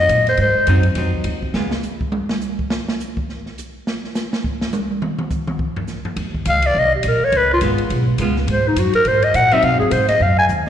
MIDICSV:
0, 0, Header, 1, 6, 480
1, 0, Start_track
1, 0, Tempo, 289017
1, 638, Time_signature, 4, 2, 24, 8
1, 17754, End_track
2, 0, Start_track
2, 0, Title_t, "Clarinet"
2, 0, Program_c, 0, 71
2, 0, Note_on_c, 0, 75, 91
2, 423, Note_off_c, 0, 75, 0
2, 476, Note_on_c, 0, 72, 79
2, 641, Note_off_c, 0, 72, 0
2, 689, Note_on_c, 0, 72, 80
2, 1382, Note_off_c, 0, 72, 0
2, 10773, Note_on_c, 0, 77, 89
2, 11066, Note_on_c, 0, 74, 94
2, 11091, Note_off_c, 0, 77, 0
2, 11273, Note_on_c, 0, 75, 97
2, 11298, Note_off_c, 0, 74, 0
2, 11529, Note_off_c, 0, 75, 0
2, 11550, Note_on_c, 0, 67, 53
2, 11757, Note_on_c, 0, 70, 81
2, 11782, Note_off_c, 0, 67, 0
2, 12033, Note_on_c, 0, 73, 106
2, 12058, Note_off_c, 0, 70, 0
2, 12239, Note_on_c, 0, 71, 85
2, 12264, Note_off_c, 0, 73, 0
2, 12491, Note_off_c, 0, 71, 0
2, 12518, Note_on_c, 0, 65, 89
2, 12614, Note_off_c, 0, 65, 0
2, 14137, Note_on_c, 0, 72, 84
2, 14415, Note_on_c, 0, 63, 70
2, 14440, Note_off_c, 0, 72, 0
2, 14604, Note_on_c, 0, 66, 77
2, 14629, Note_off_c, 0, 63, 0
2, 14855, Note_off_c, 0, 66, 0
2, 14865, Note_on_c, 0, 70, 104
2, 15080, Note_on_c, 0, 72, 89
2, 15105, Note_off_c, 0, 70, 0
2, 15343, Note_on_c, 0, 75, 94
2, 15368, Note_off_c, 0, 72, 0
2, 15538, Note_on_c, 0, 78, 96
2, 15563, Note_off_c, 0, 75, 0
2, 15827, Note_on_c, 0, 76, 94
2, 15852, Note_off_c, 0, 78, 0
2, 16016, Note_on_c, 0, 77, 105
2, 16041, Note_off_c, 0, 76, 0
2, 16258, Note_off_c, 0, 77, 0
2, 16268, Note_on_c, 0, 68, 76
2, 16470, Note_on_c, 0, 72, 92
2, 16495, Note_off_c, 0, 68, 0
2, 16742, Note_off_c, 0, 72, 0
2, 16752, Note_on_c, 0, 75, 98
2, 16981, Note_on_c, 0, 77, 87
2, 17006, Note_off_c, 0, 75, 0
2, 17240, Note_off_c, 0, 77, 0
2, 17250, Note_on_c, 0, 80, 100
2, 17364, Note_off_c, 0, 80, 0
2, 17754, End_track
3, 0, Start_track
3, 0, Title_t, "Hollow-body jazz guitar"
3, 0, Program_c, 1, 26
3, 1124, Note_on_c, 1, 54, 61
3, 1127, Note_on_c, 1, 60, 64
3, 1144, Note_on_c, 1, 63, 65
3, 1382, Note_off_c, 1, 54, 0
3, 1384, Note_off_c, 1, 60, 0
3, 1393, Note_off_c, 1, 63, 0
3, 1603, Note_on_c, 1, 54, 45
3, 1620, Note_on_c, 1, 60, 50
3, 1627, Note_on_c, 1, 63, 50
3, 2315, Note_off_c, 1, 54, 0
3, 2324, Note_off_c, 1, 60, 0
3, 2327, Note_off_c, 1, 63, 0
3, 2564, Note_on_c, 1, 56, 49
3, 2581, Note_on_c, 1, 59, 53
3, 2589, Note_on_c, 1, 65, 57
3, 2853, Note_off_c, 1, 56, 0
3, 2862, Note_off_c, 1, 59, 0
3, 2866, Note_off_c, 1, 65, 0
3, 12661, Note_on_c, 1, 56, 58
3, 12674, Note_on_c, 1, 59, 57
3, 12680, Note_on_c, 1, 65, 63
3, 13364, Note_off_c, 1, 56, 0
3, 13370, Note_off_c, 1, 59, 0
3, 13373, Note_off_c, 1, 65, 0
3, 13623, Note_on_c, 1, 56, 62
3, 13639, Note_on_c, 1, 59, 61
3, 13644, Note_on_c, 1, 65, 70
3, 13873, Note_off_c, 1, 56, 0
3, 13881, Note_off_c, 1, 59, 0
3, 13884, Note_off_c, 1, 65, 0
3, 15807, Note_on_c, 1, 54, 74
3, 15815, Note_on_c, 1, 60, 85
3, 15831, Note_on_c, 1, 63, 75
3, 16440, Note_off_c, 1, 54, 0
3, 16444, Note_off_c, 1, 60, 0
3, 16452, Note_off_c, 1, 63, 0
3, 17754, End_track
4, 0, Start_track
4, 0, Title_t, "Upright bass"
4, 0, Program_c, 2, 32
4, 148, Note_on_c, 2, 46, 84
4, 620, Note_off_c, 2, 46, 0
4, 630, Note_on_c, 2, 44, 75
4, 1101, Note_off_c, 2, 44, 0
4, 1118, Note_on_c, 2, 42, 92
4, 1576, Note_off_c, 2, 42, 0
4, 1586, Note_on_c, 2, 41, 84
4, 2057, Note_off_c, 2, 41, 0
4, 2067, Note_on_c, 2, 39, 79
4, 2542, Note_off_c, 2, 39, 0
4, 2557, Note_on_c, 2, 37, 81
4, 2841, Note_off_c, 2, 37, 0
4, 10237, Note_on_c, 2, 39, 79
4, 10709, Note_off_c, 2, 39, 0
4, 10721, Note_on_c, 2, 37, 95
4, 11191, Note_off_c, 2, 37, 0
4, 11201, Note_on_c, 2, 36, 79
4, 11670, Note_off_c, 2, 36, 0
4, 11684, Note_on_c, 2, 34, 83
4, 11938, Note_off_c, 2, 34, 0
4, 12162, Note_on_c, 2, 37, 78
4, 12630, Note_off_c, 2, 37, 0
4, 12649, Note_on_c, 2, 32, 89
4, 13113, Note_off_c, 2, 32, 0
4, 13123, Note_on_c, 2, 35, 85
4, 13589, Note_off_c, 2, 35, 0
4, 13599, Note_on_c, 2, 37, 87
4, 14063, Note_off_c, 2, 37, 0
4, 14072, Note_on_c, 2, 44, 86
4, 14543, Note_off_c, 2, 44, 0
4, 14552, Note_on_c, 2, 42, 90
4, 14825, Note_off_c, 2, 42, 0
4, 15040, Note_on_c, 2, 44, 86
4, 15506, Note_off_c, 2, 44, 0
4, 15514, Note_on_c, 2, 46, 85
4, 15982, Note_off_c, 2, 46, 0
4, 15991, Note_on_c, 2, 48, 86
4, 16141, Note_off_c, 2, 48, 0
4, 16141, Note_on_c, 2, 44, 65
4, 16289, Note_off_c, 2, 44, 0
4, 16299, Note_on_c, 2, 42, 70
4, 16453, Note_off_c, 2, 42, 0
4, 16463, Note_on_c, 2, 44, 94
4, 16935, Note_off_c, 2, 44, 0
4, 16945, Note_on_c, 2, 42, 85
4, 17416, Note_off_c, 2, 42, 0
4, 17427, Note_on_c, 2, 39, 90
4, 17754, Note_off_c, 2, 39, 0
4, 17754, End_track
5, 0, Start_track
5, 0, Title_t, "Muted upright bass strokes"
5, 11948, Note_on_c, 9, 29, 38
5, 12114, Note_off_c, 9, 29, 0
5, 14836, Note_on_c, 9, 29, 40
5, 15002, Note_off_c, 9, 29, 0
5, 17754, End_track
6, 0, Start_track
6, 0, Title_t, "Drums"
6, 152, Note_on_c, 9, 44, 50
6, 152, Note_on_c, 9, 51, 64
6, 156, Note_on_c, 9, 36, 22
6, 319, Note_off_c, 9, 44, 0
6, 319, Note_off_c, 9, 51, 0
6, 323, Note_off_c, 9, 36, 0
6, 442, Note_on_c, 9, 51, 43
6, 450, Note_on_c, 9, 38, 39
6, 608, Note_off_c, 9, 51, 0
6, 616, Note_off_c, 9, 38, 0
6, 620, Note_on_c, 9, 51, 56
6, 633, Note_on_c, 9, 36, 21
6, 786, Note_off_c, 9, 51, 0
6, 799, Note_off_c, 9, 36, 0
6, 1107, Note_on_c, 9, 44, 57
6, 1107, Note_on_c, 9, 51, 61
6, 1114, Note_on_c, 9, 36, 20
6, 1273, Note_off_c, 9, 44, 0
6, 1273, Note_off_c, 9, 51, 0
6, 1280, Note_off_c, 9, 36, 0
6, 1381, Note_on_c, 9, 51, 43
6, 1547, Note_off_c, 9, 51, 0
6, 1580, Note_on_c, 9, 51, 64
6, 1588, Note_on_c, 9, 38, 35
6, 1594, Note_on_c, 9, 36, 17
6, 1746, Note_off_c, 9, 51, 0
6, 1754, Note_off_c, 9, 38, 0
6, 1760, Note_off_c, 9, 36, 0
6, 1885, Note_on_c, 9, 36, 49
6, 2051, Note_off_c, 9, 36, 0
6, 2058, Note_on_c, 9, 44, 52
6, 2058, Note_on_c, 9, 51, 63
6, 2077, Note_on_c, 9, 36, 18
6, 2224, Note_off_c, 9, 44, 0
6, 2224, Note_off_c, 9, 51, 0
6, 2243, Note_off_c, 9, 36, 0
6, 2367, Note_on_c, 9, 36, 61
6, 2533, Note_off_c, 9, 36, 0
6, 2554, Note_on_c, 9, 38, 84
6, 2720, Note_off_c, 9, 38, 0
6, 2844, Note_on_c, 9, 38, 84
6, 3010, Note_off_c, 9, 38, 0
6, 3033, Note_on_c, 9, 44, 53
6, 3199, Note_off_c, 9, 44, 0
6, 3334, Note_on_c, 9, 36, 71
6, 3500, Note_off_c, 9, 36, 0
6, 3520, Note_on_c, 9, 48, 94
6, 3686, Note_off_c, 9, 48, 0
6, 3809, Note_on_c, 9, 38, 87
6, 3975, Note_off_c, 9, 38, 0
6, 4003, Note_on_c, 9, 44, 53
6, 4169, Note_off_c, 9, 44, 0
6, 4301, Note_on_c, 9, 36, 67
6, 4467, Note_off_c, 9, 36, 0
6, 4491, Note_on_c, 9, 38, 87
6, 4657, Note_off_c, 9, 38, 0
6, 4792, Note_on_c, 9, 38, 84
6, 4958, Note_off_c, 9, 38, 0
6, 4979, Note_on_c, 9, 44, 49
6, 5145, Note_off_c, 9, 44, 0
6, 5264, Note_on_c, 9, 36, 70
6, 5430, Note_off_c, 9, 36, 0
6, 5468, Note_on_c, 9, 38, 33
6, 5634, Note_off_c, 9, 38, 0
6, 5749, Note_on_c, 9, 38, 33
6, 5915, Note_off_c, 9, 38, 0
6, 5944, Note_on_c, 9, 44, 56
6, 6110, Note_off_c, 9, 44, 0
6, 6429, Note_on_c, 9, 38, 87
6, 6595, Note_off_c, 9, 38, 0
6, 6714, Note_on_c, 9, 38, 35
6, 6880, Note_off_c, 9, 38, 0
6, 6891, Note_on_c, 9, 44, 54
6, 6899, Note_on_c, 9, 38, 88
6, 7057, Note_off_c, 9, 44, 0
6, 7065, Note_off_c, 9, 38, 0
6, 7188, Note_on_c, 9, 38, 86
6, 7354, Note_off_c, 9, 38, 0
6, 7380, Note_on_c, 9, 36, 75
6, 7546, Note_off_c, 9, 36, 0
6, 7663, Note_on_c, 9, 38, 86
6, 7829, Note_off_c, 9, 38, 0
6, 7847, Note_on_c, 9, 44, 55
6, 7855, Note_on_c, 9, 48, 93
6, 8013, Note_off_c, 9, 44, 0
6, 8022, Note_off_c, 9, 48, 0
6, 8147, Note_on_c, 9, 48, 36
6, 8313, Note_off_c, 9, 48, 0
6, 8336, Note_on_c, 9, 47, 88
6, 8502, Note_off_c, 9, 47, 0
6, 8612, Note_on_c, 9, 47, 89
6, 8779, Note_off_c, 9, 47, 0
6, 8808, Note_on_c, 9, 44, 53
6, 8813, Note_on_c, 9, 36, 73
6, 8974, Note_off_c, 9, 44, 0
6, 8979, Note_off_c, 9, 36, 0
6, 9092, Note_on_c, 9, 47, 90
6, 9258, Note_off_c, 9, 47, 0
6, 9287, Note_on_c, 9, 36, 75
6, 9453, Note_off_c, 9, 36, 0
6, 9574, Note_on_c, 9, 43, 89
6, 9740, Note_off_c, 9, 43, 0
6, 9755, Note_on_c, 9, 44, 54
6, 9763, Note_on_c, 9, 38, 37
6, 9921, Note_off_c, 9, 44, 0
6, 9929, Note_off_c, 9, 38, 0
6, 10047, Note_on_c, 9, 43, 82
6, 10213, Note_off_c, 9, 43, 0
6, 10238, Note_on_c, 9, 51, 56
6, 10247, Note_on_c, 9, 36, 23
6, 10404, Note_off_c, 9, 51, 0
6, 10413, Note_off_c, 9, 36, 0
6, 10537, Note_on_c, 9, 36, 57
6, 10703, Note_off_c, 9, 36, 0
6, 10719, Note_on_c, 9, 44, 53
6, 10719, Note_on_c, 9, 51, 67
6, 10885, Note_off_c, 9, 44, 0
6, 10885, Note_off_c, 9, 51, 0
6, 10999, Note_on_c, 9, 51, 72
6, 11165, Note_off_c, 9, 51, 0
6, 11206, Note_on_c, 9, 36, 27
6, 11373, Note_off_c, 9, 36, 0
6, 11672, Note_on_c, 9, 44, 51
6, 11672, Note_on_c, 9, 51, 75
6, 11687, Note_on_c, 9, 36, 22
6, 11838, Note_off_c, 9, 44, 0
6, 11838, Note_off_c, 9, 51, 0
6, 11853, Note_off_c, 9, 36, 0
6, 12162, Note_on_c, 9, 51, 61
6, 12170, Note_on_c, 9, 36, 20
6, 12328, Note_off_c, 9, 51, 0
6, 12336, Note_off_c, 9, 36, 0
6, 12636, Note_on_c, 9, 44, 64
6, 12636, Note_on_c, 9, 51, 67
6, 12646, Note_on_c, 9, 36, 21
6, 12802, Note_off_c, 9, 44, 0
6, 12802, Note_off_c, 9, 51, 0
6, 12812, Note_off_c, 9, 36, 0
6, 12924, Note_on_c, 9, 51, 48
6, 13090, Note_off_c, 9, 51, 0
6, 13124, Note_on_c, 9, 51, 65
6, 13127, Note_on_c, 9, 36, 20
6, 13290, Note_off_c, 9, 51, 0
6, 13293, Note_off_c, 9, 36, 0
6, 13588, Note_on_c, 9, 44, 64
6, 13588, Note_on_c, 9, 51, 72
6, 13603, Note_on_c, 9, 36, 21
6, 13754, Note_off_c, 9, 44, 0
6, 13754, Note_off_c, 9, 51, 0
6, 13769, Note_off_c, 9, 36, 0
6, 13889, Note_on_c, 9, 38, 47
6, 14055, Note_off_c, 9, 38, 0
6, 14081, Note_on_c, 9, 51, 63
6, 14084, Note_on_c, 9, 36, 22
6, 14247, Note_off_c, 9, 51, 0
6, 14250, Note_off_c, 9, 36, 0
6, 14555, Note_on_c, 9, 44, 62
6, 14555, Note_on_c, 9, 51, 74
6, 14560, Note_on_c, 9, 36, 24
6, 14721, Note_off_c, 9, 44, 0
6, 14721, Note_off_c, 9, 51, 0
6, 14726, Note_off_c, 9, 36, 0
6, 14837, Note_on_c, 9, 51, 48
6, 15004, Note_off_c, 9, 51, 0
6, 15027, Note_on_c, 9, 51, 64
6, 15038, Note_on_c, 9, 36, 25
6, 15193, Note_off_c, 9, 51, 0
6, 15204, Note_off_c, 9, 36, 0
6, 15319, Note_on_c, 9, 51, 45
6, 15485, Note_off_c, 9, 51, 0
6, 15513, Note_on_c, 9, 44, 58
6, 15513, Note_on_c, 9, 51, 72
6, 15515, Note_on_c, 9, 36, 25
6, 15679, Note_off_c, 9, 44, 0
6, 15679, Note_off_c, 9, 51, 0
6, 15681, Note_off_c, 9, 36, 0
6, 15800, Note_on_c, 9, 51, 45
6, 15966, Note_off_c, 9, 51, 0
6, 15984, Note_on_c, 9, 51, 57
6, 15992, Note_on_c, 9, 36, 22
6, 16150, Note_off_c, 9, 51, 0
6, 16158, Note_off_c, 9, 36, 0
6, 16462, Note_on_c, 9, 44, 56
6, 16462, Note_on_c, 9, 51, 76
6, 16467, Note_on_c, 9, 36, 22
6, 16628, Note_off_c, 9, 44, 0
6, 16628, Note_off_c, 9, 51, 0
6, 16633, Note_off_c, 9, 36, 0
6, 16749, Note_on_c, 9, 51, 65
6, 16757, Note_on_c, 9, 38, 53
6, 16915, Note_off_c, 9, 51, 0
6, 16923, Note_off_c, 9, 38, 0
6, 16945, Note_on_c, 9, 36, 23
6, 17111, Note_off_c, 9, 36, 0
6, 17415, Note_on_c, 9, 44, 54
6, 17581, Note_off_c, 9, 44, 0
6, 17754, End_track
0, 0, End_of_file